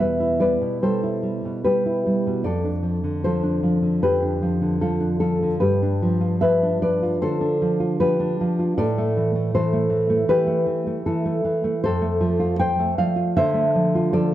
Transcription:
Already playing: E2 B2
0.00 G3 B4 E5
0.20 E4
0.40 G3 B4 D5
0.61 B2
0.82 G3 A4 C5
1.03 E4
1.23 G3
1.45 B2
1.64 G3 G4 B4
1.86 E4
2.06 G3
2.27 B2
2.44 F2 A4 D5
2.64 D4
2.83 F3
3.04 D3
3.24 F3 A4 C5
3.43 D4
3.63 F3
3.82 D3
4.02 F2 G4 B4
4.22 D4
4.42 F3
4.62 D3
4.81 F3 F4 A4
5.00 D4
5.20 F3 F4 A4
5.43 D3
5.60 G2 G4 B4
5.82 D4
6.02 F3
6.21 F4
6.41 F3 B4 E5
6.63 D4
6.82 F3 B4 D5
7.03 F4
7.21 D3 A4 C5
7.41 D4
7.62 F3
7.80 F4
8.00 F3 G4 B4
8.20 D4
8.41 F3
8.59 F4
8.77 A2 A4 D5
8.98 A3
9.17 E3
9.35 A3
9.55 E3 A4 C5
9.73 A3
9.90 E3
10.10 A3
10.28 E3 G4 B4
10.47 A3
10.66 E3
10.87 A3
11.06 E3 E4 A4
11.26 A3
11.45 E3
11.64 A3
11.84 F2 A4 C5
12.02 A3
12.21 F3
12.40 F4
12.59 F3 C5 G5
12.79 A3
12.98 F3 D5 F5
13.16 F4
13.37 D3 C5 E5
13.54 A3
13.75 F3
13.95 F4
14.13 F3 A4 D5

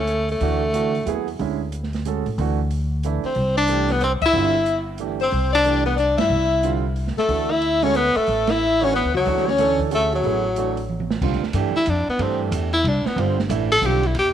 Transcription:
Already playing: D2
0.00 A3
0.07 closed hi-hat
0.28 A3, open hi-hat
0.40 D2 E3 A3 D4 F#4, open hi-hat
0.73 E3 A3 D4 F#4, closed hi-hat
0.95 open hi-hat
1.06 D#2 F#3 B3 E4 G#4, closed hi-hat
1.28 open hi-hat
1.39 D2 D3 G#3 C#4 E4, open hi-hat
1.72 closed hi-hat
1.83 snare
1.93 snare, open hi-hat
2.05 G#3 C#4 F#4 A4, closed hi-hat
2.26 A2, open hi-hat
2.38 D2 E3 A3 D4 F#4, open hi-hat
2.71 open hi-hat
3.03 E3 A3 D4 E4, closed hi-hat
3.24 C4 C5, muted upright bass stroke, open hi-hat
3.35 C2, open hi-hat
3.57 D4 D5
3.67 E3 A3 D4 G4, closed hi-hat
3.88 B3 B4, snare, open hi-hat
4.00 C4 C5, closed hi-hat
4.21 E4 E5, muted upright bass stroke, kick, ride
4.33 G1 D3 G3 C4 F4
4.66 closed hi-hat
4.98 E3 A3 D4 G4, closed hi-hat
5.20 C4 C5, open hi-hat
5.31 C2, open hi-hat
5.53 D4 D5
5.64 E3 A3 D4 G4, closed hi-hat
5.85 B3 B4, open hi-hat
5.96 D4 D5, closed hi-hat
6.17 G2 E4 E5, snare, ride
6.30 C2
6.63 D3 G3 C4 F4, closed hi-hat
6.96 open hi-hat
7.07 snare
7.17 A3 A4, muted upright bass stroke, snare
7.28 D2 E3 A3 D4 F#4, open hi-hat
7.51 E4 E5
7.62 closed hi-hat
7.82 G#3 C#4 F#4 A4 C#5, open hi-hat
7.94 B3 B4, closed hi-hat
8.15 A3 A4, muted upright bass stroke, open hi-hat
8.26 A1, open hi-hat
8.47 E4 E5, snare, ride
8.80 E3 A3 C#4 D4 F#4 C#5, open hi-hat
8.92 B3 B4, open hi-hat
9.04 D2
9.14 C#2 F#3 F#4
9.26 D2 E3 A3 D4 F#4, open hi-hat
9.37 snare
9.46 C#5, snare
9.50 C#4
9.58 E3 A3 D4 A4, snare, closed hi-hat
9.79 kick, open hi-hat
9.91 A3 C#4 F#4 G#4 A4, closed hi-hat
10.12 F#3 F#4, open hi-hat
10.24 A1 F#3 B3 E4 G#4, open hi-hat
10.56 E3 A3 D4 F#4, closed hi-hat
10.77 open hi-hat
10.89 high tom
11.00 high tom
11.11 snare
11.21 C2 D3 G3 C4 F4, kick, crash
11.33 snare
11.42 muted upright bass stroke, snare
11.53 G2 E3 A3 D4 G4, hi-hat pedal, ride
11.75 E4, muted upright bass stroke
11.86 F2 D4, hi-hat pedal, ride
12.08 B3, muted upright bass stroke
12.19 G2 E3 A3 C4 D4 G4, ride
12.51 E2, hi-hat pedal, ride
12.73 E4, ride
12.84 C2 D4, ride
13.06 B3, muted upright bass stroke, snare
13.16 G1 D3 G3 C4 F4, ride
13.21 C4
13.39 snare
13.49 A1 E3 A3 D4 E4, hi-hat pedal, ride
13.72 A4
13.82 B1 D3 G3 C4 F4, hi-hat pedal, ride
13.86 G4
14.03 E4, ride
14.15 E2, ride
14.19 G4

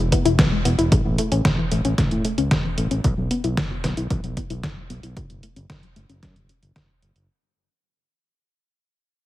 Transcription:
0.12 B3, kick, closed hi-hat
0.25 E1 E4, closed hi-hat
0.39 B1 E3, kick, snare, closed hi-hat
0.52 G#3
0.65 E1 B3, closed hi-hat
0.79 E1 E4, closed hi-hat
0.92 A1 C#3, kick, closed hi-hat
1.05 A1 E3
1.18 A3, closed hi-hat
1.32 A1 C#4, closed hi-hat
1.45 A1 C#3, kick, snare, closed hi-hat
1.58 E3
1.72 A1 A3, closed hi-hat
1.85 A1 C#4, closed hi-hat
1.98 A1 C#3, kick, snare, closed hi-hat
2.11 A2 E3, closed hi-hat
2.25 A3, closed hi-hat
2.38 C#2 C#4, closed hi-hat
2.51 E1 C#3, kick, snare, closed hi-hat
2.65 E3
2.78 A1 A3, closed hi-hat
2.91 A1 C#4, closed hi-hat
3.04 B1 E3, kick, closed hi-hat
3.17 B1 F#3
3.31 B3, closed hi-hat
3.44 B1 E4, closed hi-hat
3.57 F#1 E3, kick, snare, closed hi-hat
3.71 F#3
3.84 B1 B3, snare, closed hi-hat
3.97 B1 E4, closed hi-hat
4.10 B1 E3, kick, closed hi-hat
4.24 B1 F#3, closed hi-hat
4.37 B3, kick, closed hi-hat
4.50 B1 E4, closed hi-hat
4.63 F#1 E3, kick, snare, closed hi-hat
4.77 F#3
4.90 B1 B3, closed hi-hat
5.03 B1 E4, closed hi-hat
5.16 F#1 C#3, kick, closed hi-hat
5.30 F#1 F#3, closed hi-hat
5.43 A3, closed hi-hat
5.56 F#1 C#4, closed hi-hat
5.70 F#1 C#3, kick, snare, closed hi-hat
5.83 F#3, closed hi-hat
5.96 F#1 A3, closed hi-hat
6.09 F#1 C#4, closed hi-hat
6.23 F#2 C#3, kick, snare, closed hi-hat
6.36 F#1 F#3, closed hi-hat
6.49 F#4, closed hi-hat
6.63 F#1 C#3, closed hi-hat
6.76 F#1, kick, snare, closed hi-hat
6.89 A3
7.02 F#1 C#3, closed hi-hat
7.16 F#1 A4, closed hi-hat

